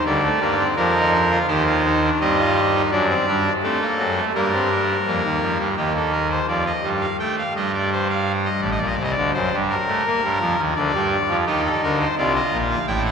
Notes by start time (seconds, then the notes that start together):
0.05 D2 D3 G3 D5
0.23 A3
0.41 G2 G3 A#3
0.57 C4
0.76 F2 F3 D4 A#4
0.95 D#4
1.31 F4
1.48 D#2 D#3 G4 C5
1.66 F4
1.85 D#4
2.03 D4
2.20 G2 G3 C4 D#5
2.38 F4
2.75 D#4
2.92 F#2 F#3 D4 D5
3.10 C4
3.27 G2 G3 D4
3.63 A3 C4 A4
3.80 A#3
3.98 F#2 F#3
4.16 A3
4.34 G2 G3 A#3 A#4
4.53 C4
4.70 D4
5.06 F2 F3 A#3
5.24 D#2 D#3
5.41 F2 F3
5.58 G2 G3
5.77 D#2 D#3 G4
5.96 A4
6.12 A#4
6.30 C5
6.48 F2 F3 D5
6.66 D#5
6.83 G2 G3
7.01 F5
7.19 A3 G5
7.38 F5
7.55 G2 G3 D#5
7.75 D5
7.92 C5
8.10 F5
8.45 D#5
8.62 A1 A2 D5
8.71 D#5
8.79 A#1 A#2 D5
8.86 D#5
8.95 C3 D5
8.99 C2
9.03 D#5
9.11 D5
9.17 D2 D3
9.34 F#2 F#3 C5
9.53 G2 G3
9.70 A#4
9.88 A3
10.06 A#3
10.24 G2 G3
10.40 F2 F3
10.58 D#2 D#3
10.76 D2 D3 D5
10.94 G2 G3
11.29 F2 F3
11.46 D#2 D#3 D#4 G4
11.65 A4
11.83 D2 D3 A#4
12.00 C5
12.18 C2 C3 F4 D5
12.35 D#5
12.52 A#1 A#2
12.71 F5
12.87 A1 A2 E4 G5
13.06 F#5